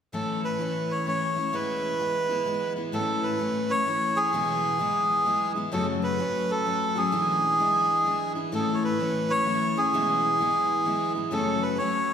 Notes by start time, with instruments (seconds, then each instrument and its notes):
0.13 steel-string acoustic guitar A2 E3 A3 C#4 E4, melodica A4
0.44 melodica B4
0.58 steel-string acoustic guitar E3 A3 C#4 E4
0.91 melodica C#5
1.06 steel-string acoustic guitar E3 A3 C#4 E4, melodica C#5
1.36 steel-string acoustic guitar A3 C#4 E4
1.52 steel-string acoustic guitar E2 B2 E3 G#3 B3 E4, melodica B4
1.99 steel-string acoustic guitar E3 G#3 B3 E4
2.29 steel-string acoustic guitar E3 G#3 B3 E4
2.45 steel-string acoustic guitar E3 G#3 B3 E4
2.76 steel-string acoustic guitar E3 G#3 B3 E4
2.92 steel-string acoustic guitar A2 E3 A3 C#4 E4, melodica A4
3.23 melodica B4
3.39 steel-string acoustic guitar E3 A3 C#4 E4
3.69 steel-string acoustic guitar A3 C#4 E4, melodica C#5
3.86 steel-string acoustic guitar E3 A3 C#4 E4
4.16 melodica G#4
4.33 steel-string acoustic guitar E2 B2 E3 G#3 B3 E4
4.79 steel-string acoustic guitar E3 G#3 B3 E4
5.25 steel-string acoustic guitar E3 G#3 B3 E4
5.55 steel-string acoustic guitar E3 G#3 B3 E4
5.72 steel-string acoustic guitar F#2 C#3 F#3 A3 C#4 F#4, melodica A4
6.03 melodica B4
6.18 steel-string acoustic guitar F#3 A3 C#4 F#4
6.51 melodica A4
6.65 steel-string acoustic guitar F#3 A3 C#4 F#4
6.95 steel-string acoustic guitar F#3 A3 C#4 F#4, melodica G#4
7.12 steel-string acoustic guitar E2 B2 E3 G#3 D4 E4
7.59 steel-string acoustic guitar E3 G#3 D4 E4
8.05 steel-string acoustic guitar E3 G#3 D4 E4
8.35 steel-string acoustic guitar E3 G#3 D4 E4
8.52 steel-string acoustic guitar A2 E3 A3 C#4 E4, melodica A4
8.74 melodica C#5
8.84 melodica B4
8.99 steel-string acoustic guitar E3 A3 C#4 E4
9.29 steel-string acoustic guitar A3 C#4 E4, melodica C#5
9.45 steel-string acoustic guitar E3 A3 C#4 E4
9.75 steel-string acoustic guitar A3 C#4 E4, melodica G#4
9.93 steel-string acoustic guitar E2 B2 E3 G#3 B3 E4
10.39 steel-string acoustic guitar E3 G#3 B3 E4
10.85 steel-string acoustic guitar E3 G#3 B3 E4
11.15 steel-string acoustic guitar E3 G#3 B3 E4
11.31 steel-string acoustic guitar F#2 C#3 F#3 A3 C#4 F#4, melodica A4
11.62 melodica B4
11.78 steel-string acoustic guitar F#3 A3 C#4 F#4, melodica C#5